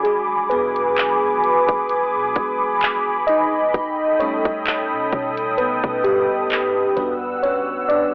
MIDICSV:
0, 0, Header, 1, 5, 480
1, 0, Start_track
1, 0, Tempo, 923077
1, 26, Time_signature, 4, 2, 24, 8
1, 4234, End_track
2, 0, Start_track
2, 0, Title_t, "Analog synth pad"
2, 0, Program_c, 0, 89
2, 0, Note_on_c, 0, 68, 78
2, 0, Note_on_c, 0, 80, 72
2, 0, Note_on_c, 0, 83, 84
2, 0, Note_on_c, 0, 86, 88
2, 1926, Note_off_c, 0, 68, 0
2, 1926, Note_off_c, 0, 80, 0
2, 1926, Note_off_c, 0, 86, 0
2, 1947, Note_on_c, 0, 69, 81
2, 1947, Note_on_c, 0, 79, 77
2, 1947, Note_on_c, 0, 87, 91
2, 3604, Note_off_c, 0, 83, 0
2, 3609, Note_off_c, 0, 69, 0
2, 3610, Note_off_c, 0, 79, 0
2, 3610, Note_off_c, 0, 87, 0
2, 3626, Note_on_c, 0, 78, 74
2, 3626, Note_on_c, 0, 88, 93
2, 3627, Note_on_c, 0, 55, 83
2, 4234, Note_off_c, 0, 55, 0
2, 4234, Note_off_c, 0, 78, 0
2, 4234, Note_off_c, 0, 88, 0
2, 4234, End_track
3, 0, Start_track
3, 0, Title_t, "FM electric piano"
3, 0, Program_c, 1, 5
3, 0, Control_c, 1, 64, 127
3, 0, Note_on_c, 1, 54, 61
3, 0, Note_on_c, 1, 56, 50
3, 0, Note_on_c, 1, 62, 61
3, 0, Note_on_c, 1, 66, 80
3, 19, Note_on_c, 1, 68, 88
3, 30, Note_off_c, 1, 56, 0
3, 30, Note_on_c, 1, 56, 67
3, 114, Note_off_c, 1, 62, 0
3, 251, Note_off_c, 1, 56, 0
3, 259, Note_on_c, 1, 71, 97
3, 270, Note_off_c, 1, 68, 0
3, 271, Note_on_c, 1, 59, 75
3, 1688, Note_off_c, 1, 59, 0
3, 1700, Note_on_c, 1, 75, 105
3, 1712, Note_on_c, 1, 63, 78
3, 1746, Note_off_c, 1, 71, 0
3, 1952, Control_c, 1, 64, 0
3, 1954, Note_off_c, 1, 66, 0
3, 1956, Note_off_c, 1, 54, 0
3, 2050, Control_c, 1, 64, 127
3, 2162, Note_off_c, 1, 75, 0
3, 2168, Note_off_c, 1, 63, 0
3, 2181, Note_on_c, 1, 73, 98
3, 2185, Note_on_c, 1, 55, 58
3, 2188, Note_on_c, 1, 57, 53
3, 2191, Note_on_c, 1, 63, 66
3, 2192, Note_on_c, 1, 61, 82
3, 2883, Note_off_c, 1, 73, 0
3, 2885, Note_off_c, 1, 55, 0
3, 2886, Note_off_c, 1, 57, 0
3, 2888, Note_off_c, 1, 61, 0
3, 2888, Note_off_c, 1, 63, 0
3, 2901, Note_on_c, 1, 71, 101
3, 2912, Note_on_c, 1, 59, 76
3, 3132, Note_off_c, 1, 59, 0
3, 3141, Note_on_c, 1, 67, 93
3, 3151, Note_off_c, 1, 71, 0
3, 3152, Note_on_c, 1, 55, 74
3, 3608, Note_off_c, 1, 55, 0
3, 3622, Note_on_c, 1, 71, 87
3, 3626, Note_on_c, 1, 55, 57
3, 3629, Note_on_c, 1, 62, 49
3, 3632, Control_c, 1, 64, 0
3, 3632, Note_on_c, 1, 66, 61
3, 3633, Note_on_c, 1, 59, 71
3, 3638, Note_off_c, 1, 67, 0
3, 3731, Control_c, 1, 64, 127
3, 3853, Note_off_c, 1, 59, 0
3, 3862, Note_on_c, 1, 73, 94
3, 3871, Note_off_c, 1, 71, 0
3, 3873, Note_on_c, 1, 61, 73
3, 4093, Note_off_c, 1, 61, 0
3, 4101, Note_on_c, 1, 74, 93
3, 4106, Note_off_c, 1, 62, 0
3, 4111, Note_off_c, 1, 73, 0
3, 4112, Note_on_c, 1, 62, 76
3, 4234, Note_off_c, 1, 55, 0
3, 4234, Note_off_c, 1, 62, 0
3, 4234, Note_off_c, 1, 66, 0
3, 4234, Note_off_c, 1, 74, 0
3, 4234, End_track
4, 0, Start_track
4, 0, Title_t, "808-style bass"
4, 0, Program_c, 2, 38
4, 0, Note_on_c, 2, 28, 107
4, 267, Note_on_c, 2, 47, 97
4, 274, Note_off_c, 2, 28, 0
4, 855, Note_off_c, 2, 47, 0
4, 876, Note_on_c, 2, 28, 105
4, 1115, Note_on_c, 2, 47, 98
4, 1123, Note_off_c, 2, 28, 0
4, 1220, Note_off_c, 2, 47, 0
4, 1227, Note_on_c, 2, 28, 100
4, 1925, Note_off_c, 2, 28, 0
4, 1946, Note_on_c, 2, 35, 110
4, 2301, Note_off_c, 2, 35, 0
4, 2316, Note_on_c, 2, 35, 105
4, 2557, Note_on_c, 2, 47, 102
4, 2564, Note_off_c, 2, 35, 0
4, 2661, Note_off_c, 2, 47, 0
4, 2666, Note_on_c, 2, 47, 114
4, 3021, Note_off_c, 2, 47, 0
4, 3036, Note_on_c, 2, 47, 102
4, 3276, Note_on_c, 2, 42, 93
4, 3284, Note_off_c, 2, 47, 0
4, 3381, Note_off_c, 2, 42, 0
4, 3626, Note_on_c, 2, 40, 105
4, 4234, Note_off_c, 2, 40, 0
4, 4234, End_track
5, 0, Start_track
5, 0, Title_t, "Drums"
5, 26, Note_on_c, 9, 42, 61
5, 78, Note_off_c, 9, 42, 0
5, 266, Note_on_c, 9, 42, 55
5, 318, Note_off_c, 9, 42, 0
5, 395, Note_on_c, 9, 42, 57
5, 447, Note_off_c, 9, 42, 0
5, 501, Note_on_c, 9, 42, 63
5, 508, Note_on_c, 9, 39, 110
5, 553, Note_off_c, 9, 42, 0
5, 560, Note_off_c, 9, 39, 0
5, 746, Note_on_c, 9, 42, 41
5, 798, Note_off_c, 9, 42, 0
5, 875, Note_on_c, 9, 36, 96
5, 875, Note_on_c, 9, 42, 72
5, 927, Note_off_c, 9, 36, 0
5, 927, Note_off_c, 9, 42, 0
5, 983, Note_on_c, 9, 42, 67
5, 1035, Note_off_c, 9, 42, 0
5, 1224, Note_on_c, 9, 42, 68
5, 1226, Note_on_c, 9, 36, 98
5, 1276, Note_off_c, 9, 42, 0
5, 1278, Note_off_c, 9, 36, 0
5, 1461, Note_on_c, 9, 42, 69
5, 1469, Note_on_c, 9, 39, 97
5, 1513, Note_off_c, 9, 42, 0
5, 1521, Note_off_c, 9, 39, 0
5, 1704, Note_on_c, 9, 42, 67
5, 1756, Note_off_c, 9, 42, 0
5, 1946, Note_on_c, 9, 36, 98
5, 1946, Note_on_c, 9, 42, 60
5, 1998, Note_off_c, 9, 36, 0
5, 1998, Note_off_c, 9, 42, 0
5, 2186, Note_on_c, 9, 42, 55
5, 2238, Note_off_c, 9, 42, 0
5, 2315, Note_on_c, 9, 36, 93
5, 2315, Note_on_c, 9, 42, 54
5, 2367, Note_off_c, 9, 36, 0
5, 2367, Note_off_c, 9, 42, 0
5, 2421, Note_on_c, 9, 42, 67
5, 2428, Note_on_c, 9, 39, 115
5, 2473, Note_off_c, 9, 42, 0
5, 2480, Note_off_c, 9, 39, 0
5, 2666, Note_on_c, 9, 36, 89
5, 2666, Note_on_c, 9, 42, 44
5, 2718, Note_off_c, 9, 36, 0
5, 2718, Note_off_c, 9, 42, 0
5, 2795, Note_on_c, 9, 42, 74
5, 2847, Note_off_c, 9, 42, 0
5, 2903, Note_on_c, 9, 42, 65
5, 2955, Note_off_c, 9, 42, 0
5, 3036, Note_on_c, 9, 36, 99
5, 3088, Note_off_c, 9, 36, 0
5, 3144, Note_on_c, 9, 42, 67
5, 3196, Note_off_c, 9, 42, 0
5, 3380, Note_on_c, 9, 42, 74
5, 3389, Note_on_c, 9, 39, 104
5, 3432, Note_off_c, 9, 42, 0
5, 3441, Note_off_c, 9, 39, 0
5, 3623, Note_on_c, 9, 42, 65
5, 3675, Note_off_c, 9, 42, 0
5, 3866, Note_on_c, 9, 42, 61
5, 3918, Note_off_c, 9, 42, 0
5, 4107, Note_on_c, 9, 42, 63
5, 4159, Note_off_c, 9, 42, 0
5, 4234, End_track
0, 0, End_of_file